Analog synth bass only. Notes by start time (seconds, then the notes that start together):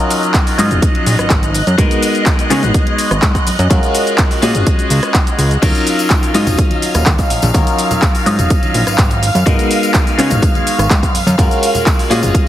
0.58 G#2
0.71 D#1
1.06 A#1
1.19 G#1
1.30 G#1
1.67 F#2
1.78 G#2
2.50 C#3
2.63 G#1
3.11 G#1
3.22 G#2
3.47 F#2
3.59 F#2
3.70 F#2
4.42 A#2
4.55 F#1
4.90 C#2
5.38 C#2
5.62 D#2
6.35 G#2
6.47 D#1
6.95 D#1
7.06 D#2
7.30 A#1
7.43 A#1
7.54 D#2
8.26 G#2
8.39 D#1
8.75 A#1
8.87 G#1
8.98 G#1
9.35 F#2
9.46 G#2
10.18 C#3
10.31 G#1
10.79 G#1
10.90 G#2
11.14 F#2
11.27 F#2
11.39 F#2
12.10 A#2
12.23 F#1